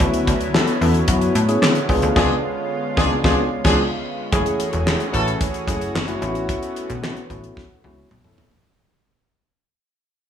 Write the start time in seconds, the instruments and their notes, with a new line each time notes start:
Already playing: analog synth pad B3 E4
0.00 analog synth bass D2, analog synth pad D3 F#3 C#4, tine electric piano B3 C#4 E4 F#4, kick, closed hi-hat
0.14 closed hi-hat
0.27 analog synth bass D2, kick, closed hi-hat
0.41 closed hi-hat
0.54 tine electric piano B3 C#4 E4 A4, snare, clap
0.67 closed hi-hat
0.81 analog synth bass E2, tine electric piano B3 C#4 E4 A4, open hi-hat
0.94 closed hi-hat
1.08 analog synth bass F#2, tine electric piano B3 C#4 E4 F#4, kick, closed hi-hat
1.21 closed hi-hat
1.35 analog synth bass A2, closed hi-hat
1.48 tine electric piano B3 C#4 E4 G#4, closed hi-hat
1.62 analog synth bass D3, snare, clap
1.75 closed hi-hat
1.89 analog synth bass C#2, analog synth pad G#3 F4, tine electric piano B3 D4 F4 G#4, kick, open hi-hat
2.02 analog synth bass D2, closed hi-hat
2.16 analog synth bass C#2, horn section F3 D4 G#4, tine electric piano B3 D4 F4 G#4, kick, snare, crash
2.97 analog synth bass C#2, horn section F3 D4 G#4, tine electric piano B3 D4 F4 G#4, kick, snare
3.24 analog synth bass C#2, horn section F3 D4 G#4, tine electric piano B3 D4 F4 G#4, kick, snare
3.65 analog synth bass C#2, horn section F3 D4 G#4, tine electric piano B3 D4 F4 G#4, kick, snare, crash
4.32 analog synth bass F#1, horn section E3 C#4 G#4, analog synth pad E3 A3 C#4 F#4 G#4, tine electric piano A3 C#4 E4 G#4, kick, closed hi-hat
4.46 closed hi-hat
4.60 closed hi-hat
4.73 analog synth bass E1, closed hi-hat
4.86 tine electric piano A3 C#4 E4 G#4, snare, clap
5.00 closed hi-hat
5.13 analog synth bass A1, horn section E3 C#4 A4, tine electric piano A3 C#4 E4 B4, kick, closed hi-hat
5.28 closed hi-hat
5.41 kick, closed hi-hat
5.54 closed hi-hat
5.67 analog synth bass F#1, tine electric piano A3 C#4 E4 G#4, kick, closed hi-hat
5.81 closed hi-hat
5.95 analog synth bass F#1, snare, clap
6.08 tine electric piano A3 C#4 E4 F#4, closed hi-hat
6.21 analog synth bass A1, analog synth pad A3 B3, tine electric piano B3 C#4 E4 F4, closed hi-hat
6.28 tine electric piano F#4
6.35 closed hi-hat
6.49 kick, closed hi-hat
6.63 closed hi-hat
6.76 closed hi-hat
6.90 analog synth bass B1, closed hi-hat
7.02 tine electric piano B3 C#4 E4 F#4, snare, clap
7.16 closed hi-hat
7.29 analog synth bass A1, tine electric piano B3 C#4 E4 F#4, kick, closed hi-hat
7.44 closed hi-hat
7.57 kick, snare
7.84 analog synth bass C#2, tine electric piano B3 C#4 E4 F#4, high tom
8.11 analog synth bass B1, mid tom
8.24 tine electric piano B3 C#4 E4 A4, mid tom
8.38 analog synth bass A#1, floor tom
8.52 floor tom